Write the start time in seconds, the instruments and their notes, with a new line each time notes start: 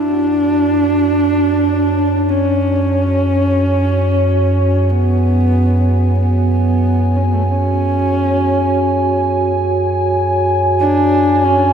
Already playing: synth drone F#2, horsehead fiddle D4, analog synth pad F#4
1.54 analog synth pad C#5
2.29 horsehead fiddle C#4
2.77 analog synth pad G#5
4.89 horsehead fiddle B3
6.19 horsehead fiddle B3
7.16 horsehead fiddle C#4
7.24 horsehead fiddle B3
7.34 horsehead fiddle A3
7.43 horsehead fiddle B3
7.51 horsehead fiddle C#4
10.79 horsehead fiddle D4
11.44 horsehead fiddle C#4